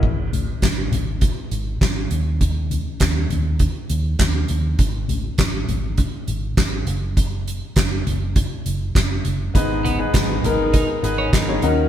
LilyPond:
<<
  \new Staff \with { instrumentName = "Grand piano" } { \time 4/4 \key gis \dorian \tempo 4 = 101 <e' cis''>16 r2. r8. | r1 | r1 | r1 |
<b dis' gis' b'>8 r16 <b dis' gis' b'>8 r16 <b dis' gis' ais'>8. r16 <b dis' gis' b'>8 r16 <b dis' gis' cis''>16 <cis' dis' fis' ais'>8 | }
  \new Staff \with { instrumentName = "Grand piano" } { \clef bass \time 4/4 \key gis \dorian r1 | r1 | r1 | r1 |
gis,4. r2 dis8 | }
  \new Staff \with { instrumentName = "Clean electric guitar" } { \time 4/4 \key gis \dorian r1 | r1 | r1 | r1 |
r8 b16 r4 r16 dis'16 r8 cis'16 dis'8. r16 | }
  \new Staff \with { instrumentName = "String section" } { \time 4/4 \key gis \dorian r1 | r1 | r1 | r1 |
<gis b dis'>2.~ <gis b dis'>8 <dis ais cis' fis' eis''>8 | }
  \new Staff \with { instrumentName = "Fingered electric bass" } { \clef bass \time 4/4 \key gis \dorian gis,,4 gis,,8 gis,,8. r16 gis,,8 gis,,8 dis,8~ | dis,4 dis,8 dis,8. r16 dis,8 dis,8 dis,8 | gis,,4 gis,,8 gis,,8. r16 gis,,8 gis,,8 fis,,8~ | fis,,4 fis,,8 fis,,8. r16 fis,,8 fis,,8 fis,,8 |
gis,,4 gis,,8 gis,,8. r16 gis,,8 gis,,8 dis,8 | }
  \new DrumStaff \with { instrumentName = "Drums" } \drummode { \time 4/4 <cymc bd>8 <hh tomfh>8 <hc hh bd sn>8 <hh tomfh>8 <hh bd>8 hh8 <hc hh bd sn>8 hh8 | <hh bd>8 <hh tomfh>8 <hc hh bd sn>8 <hh tomfh>8 <hh bd>8 hh8 <hc hh bd sn>8 hh8 | <hh bd>8 <hh tomfh>8 <hc hh bd sn>8 <hh tomfh>8 <hh bd>8 hh8 <hc hh bd sn>8 hh8 | <hh bd>8 hh8 <hc hh bd sn>8 <hh tomfh>8 <hh bd>8 hh8 <hc hh bd sn>8 hh8 |
<hh bd>8 <hh tomfh>8 <hc hh bd sn>8 <hh tomfh>8 <hh bd>8 hh8 <hc hh bd sn>8 hh8 | }
>>